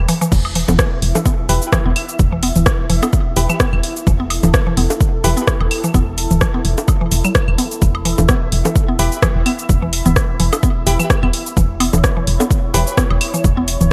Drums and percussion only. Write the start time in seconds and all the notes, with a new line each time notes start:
0.09 open hi-hat, cabasa
0.22 cabasa
0.32 kick, crash, cabasa
0.45 high woodblock
0.55 open hi-hat
0.68 mid tom, high bongo, cabasa
0.79 kick, cross-stick, cabasa
1.02 open hi-hat
1.15 high bongo, cabasa
1.26 kick, cabasa
1.49 open hi-hat, cabasa
1.62 cabasa
1.73 kick, cross-stick, cabasa, high woodblock
1.96 open hi-hat, claves
2.09 cabasa
2.19 kick, cabasa
2.43 open hi-hat
2.56 mid tom, cabasa
2.66 kick, cross-stick, cabasa
2.90 open hi-hat
3.03 high bongo, cabasa, high woodblock
3.13 kick, cabasa
3.37 open hi-hat, cabasa
3.50 cabasa, claves
3.60 kick, cross-stick, cabasa
3.73 claves
3.83 open hi-hat
3.96 cabasa
4.07 kick, cabasa
4.30 open hi-hat, high woodblock
4.43 mid tom, high bongo, cabasa
4.54 kick, cross-stick, cabasa
4.77 open hi-hat
4.90 high bongo, cabasa
5.01 kick, cabasa
5.24 open hi-hat, cabasa
5.37 cabasa
5.48 kick, cross-stick, cabasa
5.61 high woodblock
5.71 open hi-hat, claves
5.84 cabasa
5.94 kick, cabasa
6.18 open hi-hat, cabasa
6.31 mid tom, cabasa
6.41 kick, cross-stick, cabasa
6.65 open hi-hat
6.78 high bongo, cabasa
6.88 kick, cabasa, high woodblock
7.12 open hi-hat, cabasa
7.24 cabasa, claves
7.35 kick, cross-stick, cabasa
7.48 claves
7.58 open hi-hat, cabasa
7.71 cabasa
7.82 kick, cabasa
7.95 high woodblock
8.05 open hi-hat
8.18 mid tom, high bongo, cabasa
8.29 kick, cross-stick, cabasa
8.52 open hi-hat
8.65 high bongo, cabasa
8.76 kick, cabasa
8.99 open hi-hat, cabasa
9.12 cabasa
9.22 kick, cross-stick, cabasa, high woodblock
9.46 open hi-hat, claves
9.59 cabasa
9.69 kick, cabasa
9.93 open hi-hat
10.06 mid tom, cabasa
10.16 kick, cross-stick, cabasa
10.40 open hi-hat
10.53 high bongo, cabasa, high woodblock
10.63 kick, cabasa
10.87 open hi-hat, cabasa
11.00 cabasa, claves
11.10 kick, cross-stick, cabasa
11.23 claves
11.33 open hi-hat
11.46 cabasa
11.57 kick, cabasa
11.80 open hi-hat, high woodblock
11.93 mid tom, high bongo, cabasa
12.04 kick, cross-stick, cabasa
12.27 open hi-hat
12.40 high bongo, cabasa
12.51 kick, cabasa
12.74 open hi-hat, cabasa
12.87 cabasa
12.98 kick, cross-stick, cabasa
13.11 high woodblock
13.21 open hi-hat, claves
13.34 cabasa
13.44 kick, cabasa
13.68 open hi-hat, cabasa
13.81 mid tom, cabasa